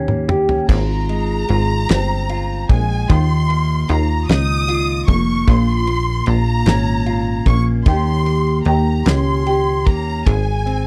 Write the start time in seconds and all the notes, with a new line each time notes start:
Already playing: D#2 D#3 C#4 G4
0.08 A#3, mid tom
0.28 G4, mid tom
0.49 C#4, floor tom
0.68 G#1 F4 A#5, kick, crash
1.09 G#3, ride
1.49 G#1 F4, ride
1.89 G1 C4, snare, ride
2.29 F4, ride
2.69 A#1 G#3 G#5, kick, ride
3.09 D#2 D#3 F4 C6, kick, ride
3.50 A#3, ride
3.89 D#2 F4 A#5, ride
4.28 C#2 D#4 D#6, snare, ride
4.68 F4, ride
5.08 F1 A#3 C#6, kick, ride
5.47 A#1 A#2 F4 C6, kick, ride
5.87 A#3, ride
6.26 A#1 F4 A#5, ride
6.66 G#1 C#4, snare, ride
7.06 F4, ride
7.46 A#1 A#3 C#6, kick, ride
7.86 D#2 D#3 G4 C6, kick, ride
8.26 A#3, ride
8.65 D#2 G4 A#5, ride
9.06 C#2 C#4 C6, snare, ride
9.46 G4, ride
9.86 D#2 A#3 A#5, kick, ride
10.26 G#1 G#4 G#5, kick, ride
10.66 C4, ride